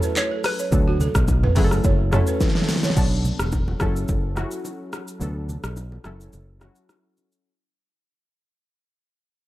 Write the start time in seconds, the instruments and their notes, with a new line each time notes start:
Already playing: synth keys F#3 A3 C#4 E4 A4, synth pluck E5
0.03 balafon B4, shaker
0.16 synth pluck C#5, clap, high bongo, shaker
0.31 balafon A4
0.44 synth pluck B4, cross-stick, open hi-hat, shaker
0.59 balafon C#5, shaker
0.71 fingered electric bass D2, synth keys F#3 A3 B3 D4 A4, kick, low conga, shaker
0.88 balafon F#4
1.00 balafon A4, low conga, shaker
1.15 fingered electric bass B1, kick, cross-stick, shaker
1.28 kick, high bongo, shaker
1.43 balafon B4, mid tom, low bongo
1.55 fingered electric bass F#1, synth keys F#3 A3 C#4 E4 G#4, balafon A4, kick, open hi-hat, low bongo, shaker
1.64 synth keys A4
1.71 cross-stick, shaker
1.84 fingered electric bass F#1, balafon C#5, kick, high bongo, low bongo, low conga, shaker
2.11 synth keys F#3 A3 C#4 E4 A4, balafon C#5, cross-stick, mid tom, low bongo, shaker
2.27 balafon B4, shaker
2.41 kick, snare, high bongo, shaker
2.48 snare
2.55 balafon A4, snare
2.62 snare
2.69 snare, open hi-hat, shaker
2.76 snare
2.83 balafon C#5, snare, shaker
2.90 snare
2.95 fingered electric bass B1, synth keys F#3 B3 D4 A4, kick, crash, low conga, shaker
3.25 low conga, shaker
3.39 fingered electric bass E1, cross-stick, shaker
3.52 kick, high bongo, shaker
3.68 low bongo
3.79 fingered electric bass F#1, synth keys F#3 C#4 E4 A4, kick, cross-stick, low bongo, shaker
3.96 shaker
4.08 fingered electric bass F#1, kick, low bongo, low conga, shaker
4.35 synth keys F#3 C#4 E4 F#4, cross-stick, low bongo, shaker
4.51 shaker
4.65 high bongo, shaker
4.93 cross-stick, high bongo, shaker
5.08 shaker
5.20 fingered electric bass D2, synth keys F#3 B3 D4 A4, low conga, shaker
5.49 low conga, shaker
5.64 fingered electric bass B1, cross-stick, shaker
5.77 high bongo, shaker
5.92 low bongo
6.04 fingered electric bass F#1, synth keys F#3 C#4 E4 A4, cross-stick, low bongo, shaker
6.21 shaker
6.33 fingered electric bass F#1, low bongo, low conga, shaker
6.60 synth keys F#3 C#4 E4 F#4, cross-stick, low bongo, shaker
6.76 shaker
6.89 cross-stick, high bongo, shaker
7.17 high bongo, shaker
7.32 shaker